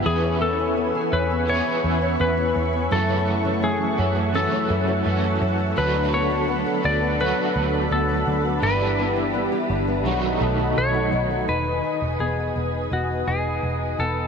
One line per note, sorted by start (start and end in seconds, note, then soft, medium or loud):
0.00 1.45 E3 medium
0.00 0.27 B3 medium
0.00 0.13 D4 medium
0.00 0.12 G4 medium
0.00 0.12 B4 medium
0.00 5.73 E5 medium
0.05 0.91 E2 loud
0.05 1.48 E3 medium
0.05 1.48 B3 medium
0.05 1.51 C#4 medium
0.05 0.41 G#4 medium
0.05 2.89 B4 medium
0.05 2.89 G#5 medium
0.05 5.73 C#6 medium
0.24 0.59 C#4 medium
0.41 0.76 B3 medium
0.41 1.15 A4 medium
0.59 1.12 C#4 medium
0.77 1.29 B3 medium
0.95 2.36 G#4 medium
1.13 1.60 E2 loud
1.13 1.66 C#4 medium
1.13 1.50 B4 medium
1.31 1.83 B3 medium
1.45 2.91 E3 medium
1.45 2.91 B3 medium
1.49 2.93 C#4 medium
1.49 2.16 C#5 loud
1.54 2.94 G#4 medium
1.66 2.01 C#4 medium
1.84 2.15 E2 medium
1.84 2.18 B3 medium
2.02 2.55 C#4 medium
2.19 2.51 E2 medium
2.19 2.72 B3 medium
2.19 2.92 B4 medium
2.37 2.98 G#4 medium
2.55 2.87 E2 medium
2.55 3.09 C#4 medium
2.73 2.98 B3 medium
2.90 3.98 F#2 medium
2.90 3.77 F#2 loud
2.90 3.98 C#3 medium
2.90 4.33 E3 medium
2.90 3.99 E3 medium
2.90 5.74 A3 medium
2.90 4.00 A3 medium
2.90 3.98 C#4 medium
2.90 3.63 A4 loud
2.90 8.59 F#5 medium
2.94 3.96 F#4 medium
3.09 3.44 C#4 medium
3.27 3.62 A3 medium
3.45 3.97 C#4 medium
3.62 4.15 A3 medium
3.62 4.35 G#4 medium
3.97 4.45 F#2 loud
3.97 4.34 A3 soft
3.97 4.50 C#4 medium
3.97 4.34 C#4 soft
3.97 4.33 F#4 soft
4.02 4.33 E3 soft
4.16 4.70 A3 medium
4.33 5.05 F#2 medium
4.33 5.05 C#3 medium
4.33 5.76 E3 medium
4.33 5.02 E3 medium
4.33 5.05 A3 medium
4.33 5.06 C#4 medium
4.33 5.09 F#4 medium
4.33 5.38 A4 medium
4.52 4.87 C#4 medium
4.70 5.01 F#2 loud
4.70 5.05 A3 medium
4.88 5.40 C#4 medium
5.03 5.37 F#2 loud
5.03 5.76 E3 medium
5.03 5.78 A3 medium
5.03 5.59 A3 medium
5.03 5.78 C#4 medium
5.09 5.79 F#4 medium
5.24 6.15 A4 medium
5.41 5.73 F#2 loud
5.41 5.84 C#4 medium
5.59 6.12 A3 medium
5.76 6.63 D2 loud
5.76 7.16 D3 medium
5.76 7.19 F#3 medium
5.76 6.84 F#3 medium
5.76 6.85 A3 medium
5.76 10.02 D4 medium
5.76 6.84 F#4 medium
5.76 8.60 A4 medium
5.76 6.14 B4 loud
5.76 6.82 B4 loud
5.76 10.02 B5 medium
5.95 6.30 D4 medium
6.12 6.48 B3 medium
6.12 6.85 C#5 loud
6.30 6.83 D4 medium
6.48 7.02 B3 medium
6.66 8.08 A4 medium
6.82 7.31 D2 medium
6.82 7.37 D4 medium
6.82 7.20 F#4 soft
6.82 7.19 B4 soft
6.82 7.21 D5 loud
6.88 7.20 A3 soft
7.02 7.55 B3 medium
7.17 8.61 D3 medium
7.17 8.59 F#3 medium
7.17 8.62 F#3 medium
7.17 7.88 B4 loud
7.22 8.63 A3 medium
7.22 8.64 F#4 medium
7.26 8.68 B4 medium
7.38 7.73 D4 medium
7.56 7.87 D2 loud
7.56 7.91 B3 medium
7.74 8.26 D4 medium
7.91 8.22 D2 loud
7.91 8.44 B3 medium
7.91 8.59 A4 medium
8.09 8.70 A4 medium
8.27 8.58 D2 loud
8.27 8.70 D4 medium
8.45 8.98 B3 medium
8.60 9.48 G1 loud
8.60 10.05 E3 medium
8.60 10.04 G3 medium
8.60 10.06 D4 medium
8.60 10.04 G4 medium
8.60 10.73 B4 loud
8.60 10.04 E5 medium
8.66 10.07 E4 medium
8.66 10.11 B4 medium
8.80 9.15 D4 medium
8.99 9.34 B3 medium
9.16 9.69 D4 medium
9.34 9.87 B3 medium
9.52 10.13 G4 medium
9.70 10.05 G1 medium
9.70 10.13 D4 medium
9.88 10.41 B3 medium
10.03 10.37 B1 medium
10.03 11.47 B2 medium
10.03 12.01 D#3 loud
10.03 11.47 F#3 medium
10.03 11.49 F#3 medium
10.03 11.47 A4 medium
10.03 11.47 D#5 medium
10.03 11.47 F#5 medium
10.03 11.47 B5 medium
10.08 11.50 A3 medium
10.08 12.01 D#4 medium
10.08 11.51 F#4 medium
10.24 10.59 D#4 medium
10.41 10.72 B1 medium
10.41 10.75 A3 medium
10.59 11.12 D#4 medium
10.77 11.08 B1 loud
10.77 11.29 A3 medium
10.77 11.45 C#5 loud
10.94 11.55 F#4 medium
11.12 11.44 B1 medium
11.12 11.83 D#4 medium
11.30 11.55 A3 medium
11.48 11.80 E1 medium
11.48 14.27 D#3 medium
11.48 14.27 B4 medium
11.48 12.22 B4 medium
11.48 14.27 D#5 medium
11.48 14.27 G#5 medium
11.48 14.27 D#6 medium
11.84 13.26 D#4 medium
12.02 12.17 E1 medium
12.19 12.51 E1 medium
12.19 12.90 B3 soft
12.19 12.93 G#4 medium
12.56 12.87 E1 medium
12.56 14.27 G#4 medium
12.91 13.23 E1 medium
12.91 13.97 B3 soft
12.91 13.29 F#4 medium
13.27 13.58 E1 medium
13.27 14.27 D#4 medium
13.27 13.99 G#4 medium
13.63 13.94 E1 medium
13.99 14.27 E1 medium
13.99 14.27 B3 medium
13.99 14.27 A4 medium